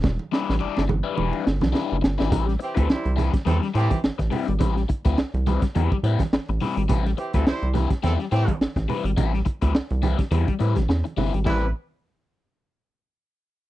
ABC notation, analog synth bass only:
X:1
M:4/4
L:1/16
Q:"Swing 16ths" 1/4=105
K:Am
V:1 name="Analog synth bass" clef=bass
E,,, z2 A,,, G,,, G,,,2 z E,,, z G,,, B,,, z ^F,,, G,,, ^G,,, | A,,,2 z D,, C,, C,,2 z E,, z A,, z A,,, A,,, z ^G,,, | A,,,2 z D,, C,, C,,2 z E,, z A,, z A,,, A,,, z ^G,,, | A,,,2 z D,, C,, C,,2 z E,, z A,, z A,,, A,,, z ^G,,, |
A,,,2 z D,, C,, C,,2 z E,, z A,, A,,, E,, z G,,, ^G,,, | A,,,2 z12 z2 |]